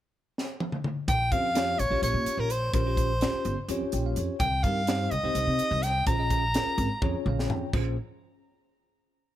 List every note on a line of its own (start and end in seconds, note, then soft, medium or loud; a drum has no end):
0.38 snare medium
0.60 high tom medium
0.72 mid tom medium
0.84 mid tom medium
1.08 1.29 A#1 medium
1.08 1.33 G5 medium
1.08 kick medium
1.08 closed hi-hat medium
1.31 1.74 F2 medium
1.31 1.48 C#4 medium
1.31 1.48 F4 soft
1.31 1.49 G4 soft
1.31 1.49 C5 medium
1.31 1.81 F5 medium
1.31 kick medium
1.31 closed hi-hat soft
1.54 1.80 C#4 medium
1.54 1.80 F4 medium
1.54 1.80 G4 medium
1.54 1.80 C#5 medium
1.54 snare medium
1.54 closed hi-hat medium
1.79 1.90 A#1 medium
1.79 2.03 C#5 medium
1.79 closed hi-hat soft
1.90 2.01 A#1 medium
1.90 2.49 C#4 medium
1.90 2.49 F4 medium
1.90 2.49 G4 medium
1.90 2.49 C#5 medium
2.02 2.13 A#1 medium
2.02 2.41 C#5 medium
2.02 closed hi-hat medium
2.14 2.25 A#2 medium
2.26 muted upright bass stroke soft
2.26 closed hi-hat medium
2.37 2.70 A#1 medium
2.37 2.52 A#4 medium
2.50 2.74 C5 medium
2.50 closed hi-hat medium
2.73 3.27 A#1 medium
2.73 2.82 C#4 medium
2.73 2.82 F4 medium
2.73 2.82 G4 medium
2.73 2.82 A#4 medium
2.73 3.65 C5 medium
2.73 kick medium
2.73 closed hi-hat medium
2.86 3.11 C#4 medium
2.86 3.11 F4 medium
2.86 3.11 G4 medium
2.86 3.11 C5 medium
2.97 kick medium
2.97 closed hi-hat soft
3.21 3.54 C#4 medium
3.21 3.54 F4 medium
3.21 3.55 G4 medium
3.21 3.55 C5 medium
3.21 snare loud
3.21 closed hi-hat medium
3.33 muted upright bass stroke soft
3.45 3.56 G1 medium
3.45 closed hi-hat soft
3.68 3.79 F2 medium
3.68 4.35 C#4 medium
3.68 4.35 F4 medium
3.68 4.35 G4 medium
3.68 4.17 C#5 medium
3.68 closed hi-hat medium
3.81 muted upright bass stroke soft
3.92 4.14 A#1 medium
3.92 4.04 G5 medium
3.92 closed hi-hat medium
4.06 4.16 F5 medium
4.16 4.27 F2 medium
4.16 4.39 C#5 medium
4.16 closed hi-hat soft
4.40 4.61 C2 medium
4.40 4.64 G5 medium
4.40 kick medium
4.40 closed hi-hat medium
4.63 5.06 G2 medium
4.63 4.81 C4 medium
4.63 4.81 D#4 medium
4.63 4.81 G4 medium
4.63 4.81 A#4 medium
4.63 5.12 F5 medium
4.63 kick medium
4.63 closed hi-hat soft
4.87 5.12 C4 medium
4.87 5.13 D#4 medium
4.87 5.13 G4 medium
4.87 5.13 C5 medium
4.87 snare medium
4.87 closed hi-hat medium
5.11 5.22 C2 medium
5.11 5.84 D#5 medium
5.11 closed hi-hat soft
5.23 5.34 C2 medium
5.23 5.81 C4 medium
5.23 5.81 D#4 medium
5.23 5.82 G4 medium
5.23 5.82 C5 medium
5.35 5.46 C2 medium
5.35 closed hi-hat medium
5.47 5.58 C3 medium
5.59 muted upright bass stroke soft
5.59 closed hi-hat medium
5.71 6.03 C2 medium
5.83 6.07 G5 medium
5.83 snare soft
5.83 closed hi-hat medium
6.07 6.60 A#1 medium
6.07 6.15 C#4 medium
6.07 6.15 F4 medium
6.07 6.15 G#4 medium
6.07 6.15 C5 medium
6.07 7.22 A#5 loud
6.07 kick medium
6.07 closed hi-hat medium
6.18 6.43 C#4 medium
6.18 6.43 F4 medium
6.18 6.43 G#4 medium
6.18 6.44 D#5 medium
6.30 kick medium
6.30 closed hi-hat medium
6.54 6.88 C#4 medium
6.54 6.88 F4 medium
6.54 6.88 G#4 medium
6.54 6.88 A#4 medium
6.54 snare medium
6.54 closed hi-hat medium
6.66 muted upright bass stroke soft
6.78 6.88 G#1 medium
6.78 kick medium
6.78 closed hi-hat medium
7.02 7.12 F2 medium
7.02 7.68 C#4 medium
7.02 7.68 F4 medium
7.02 7.68 G#4 medium
7.02 7.68 C#5 medium
7.02 kick loud
7.02 high tom medium
7.13 muted upright bass stroke soft
7.26 7.47 A#1 medium
7.26 7.49 F5 medium
7.26 mid tom medium
7.39 snare medium
7.49 7.60 F2 medium
7.49 7.72 G5 medium
7.49 floor tom medium
7.73 7.96 A#1 medium
7.73 7.96 C#4 medium
7.73 7.95 F4 medium
7.73 7.96 G#4 medium
7.73 7.96 C5 medium
7.73 kick medium
7.73 crash medium